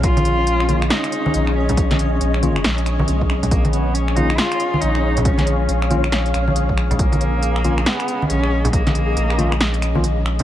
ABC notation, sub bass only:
X:1
M:4/4
L:1/8
Q:"Swing 16ths" 1/4=138
K:Bbphr
V:1 name="Sub bass" clef=bass
B,,,4 z2 B,,,2- | B,,,2 B,,,2 B,,,2 C,,2 | B,,,4 z2 B,,,2- | B,,,2 B,,,3 B,,,3 |
B,,,4 z2 B,,,2- | B,,,2 B,,,6 |]